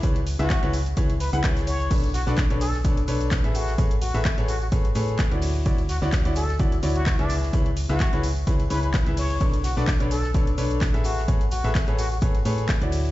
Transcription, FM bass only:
X:1
M:4/4
L:1/16
Q:"Swing 16ths" 1/4=128
K:A
V:1 name="FM bass" clef=bass
C,,3 C,,2 C,,3 C,,3 C,, z4 | B,,,3 B,,,2 B,,,3 B,,,2 B,,,3 A,,,3 | A,,,3 A,,,2 A,,,3 A,,,2 A,,3 D,,3 | D,,3 D,,2 D,,3 D,,2 D,,3 C,,3 |
C,,3 C,,2 C,,3 C,,2 C,,3 C,,3 | B,,,3 B,,,2 B,,,3 B,,,2 B,,,3 A,,,3 | A,,,3 A,,,2 A,,,3 A,,,2 A,,3 D,,3 |]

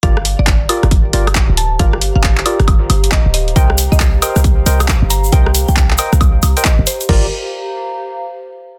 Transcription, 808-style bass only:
X:1
M:4/4
L:1/16
Q:"Swing 16ths" 1/4=136
K:Gm
V:1 name="808-style bass" clef=bass
G,,,3 G,,,3 z G,,,3 G,,,3 D,,,3 | G,,,3 G,,,3 z G,,,3 G,,,3 D,,,3 | C,,3 C,,3 z C,,3 C,,3 G,,,3 | C,,3 C,,3 z C,,3 C,, z2 G,,, z2 |
G,,,2 z12 z2 |]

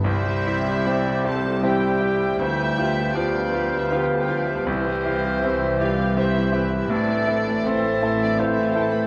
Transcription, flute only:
X:1
M:3/4
L:1/8
Q:1/4=80
K:C
V:1 name="Flute"
g'4 g'2 | g'2 g'4 | g'4 g' z | a'2 a'2 g'2 |]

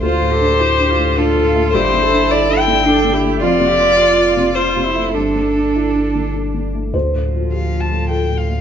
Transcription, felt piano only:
X:1
M:3/4
L:1/8
Q:1/4=105
K:Dm
V:1 name="Felt piano"
z6 | z6 | z6 | z6 |
c4 A2 |]
V:2 name="Felt piano"
(3D,, A,, D (3E D A,, (3D A,, A, | (3G,, D, D (3E D D, (3D D, A, | (3F,, C, F (3G F C, (3F C, A, | (3G,, D, D (3E D D, (3D D, A, |
(3D,, A,, F (3G F A,, (3F A,, A, |]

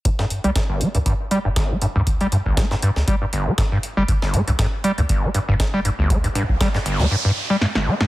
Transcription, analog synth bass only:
X:1
M:4/4
L:1/16
Q:"Swing 16ths" 1/4=119
K:Gm
V:1 name="Analog synth bass" clef=bass
G,,, z G,, C,, z3 D,, z3 G,,,3 z D,,- | D,, z G,, C,, z3 D,, z6 z G,,, | G,,, z G,, C,, z3 D,, z3 G,,,3 z D,,- | D,, z G,, C,, z3 D,, z8 |]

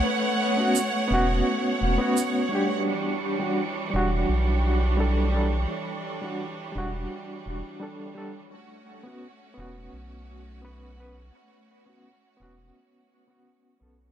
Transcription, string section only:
X:1
M:4/4
L:1/8
Q:1/4=85
K:Amix
V:1 name="String section"
[A,cf]8 | [E,G,D]8- | [E,G,D]8 | [A,CF]8- |
[A,CF]8 |]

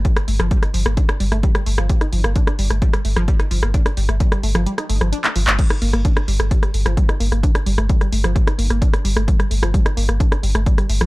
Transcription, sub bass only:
X:1
M:4/4
L:1/16
Q:1/4=130
K:Gm
V:1 name="Sub bass" clef=bass
z2 G,,, G,,, z2 G,,, G,,, z2 G,,, G,,, z2 G,,, G,,, | z2 G,,, G,,, z2 G,,, G,,, z2 G,,, G,,, z2 G,,, G,,, | z2 G,,, G,,, z2 G,,, G,,, z2 G,,, G,,, z2 G,,, G,,, | z2 G,,, G,,, z2 G,,, G,,, z2 G,,, G,,, z2 G,,, G,,, |
z2 G,,, G,,, z2 G,,, G,,, z2 G,,, G,,, z2 G,,, G,,, | z2 G,,, G,,, z2 G,,, G,,, z2 G,,, G,,, z2 G,,, G,,, |]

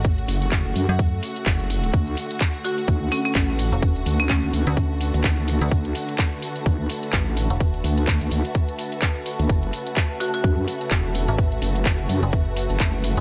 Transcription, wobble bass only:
X:1
M:4/4
L:1/16
Q:"Swing 16ths" 1/4=127
K:Dlyd
V:1 name="Wobble bass" clef=bass
z2 F,,,3 F,,, F,, z4 z F,,,4 | D,,2 z6 D,,2 z2 A,,,3 z | z2 D,,3 D,, D,, z4 D,,4 z | D,,2 z6 D,,2 z2 A,,,3 z |
z2 D,,3 D,, D,, z8 D,, | F,,,2 z6 F,,2 z2 E,,,3 z | z2 F,,,3 F,,, F,, z4 F,,,4 z |]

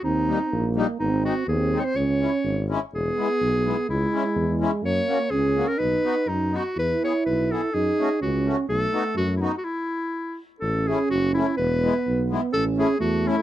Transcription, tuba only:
X:1
M:2/4
L:1/8
Q:"Swing" 1/4=125
K:C#m
V:1 name="Tuba" clef=bass
D,,2 ^A,,,2 | G,,,2 D,,2 | C,,2 G,,,2 | [K:E] E,,, z B,,,2 |
C,, z E,,2 | F,, z C,,2 | B,,, z F,,2 | E,, z B,,,2 |
F,, z C,,2 | B,,, z F,,2 | z4 | [K:A] A,,,2 F,,,2 |
E,,,2 B,,,2 | A,,,2 E,,2 |]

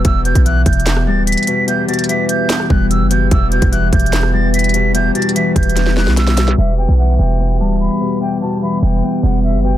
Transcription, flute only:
X:1
M:4/4
L:1/8
Q:1/4=147
K:Em
V:1 name="Flute"
e' g' f' g'2 a' b'2 | g' a' b' g'2 f' e' g' | e' g' f' g'2 a' b'2 | g' a' b' g'2 f' e'2 |
e g f g2 a b2 | g a b g2 f e g |]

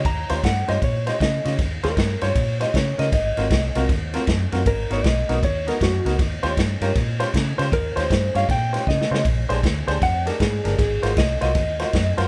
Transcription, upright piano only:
X:1
M:4/4
L:1/16
Q:"Swing" 1/4=156
K:Ebmix
V:1 name="Upright piano"
z2 [DFGc] z3 [DFGc] z3 [DFGc] z3 [DFGe] z | z2 [DFGc] z3 [DFGc] z3 [DFGc] z3 [DFGB] z | z2 [CF_GB] z3 [CFGB] z3 [CFGB] z3 [CFGB] z | z2 [_CE_GB] z3 [CEGB] z3 [CEGB] z3 [CEGB] z |
z2 [DFGc] z3 [DFGB] z3 [DFGc] z3 [DFGc] z | z2 [DFGc] z3 [DFGd] z3 [DFGc] z3 [DFGc] z | z2 [=DGAc] z3 [DGAc] z3 [DGA=d] z3 [DGAB] z | z2 [F_GBc] z3 [FGBc] z3 [FGBc] z3 [FGBc] z |]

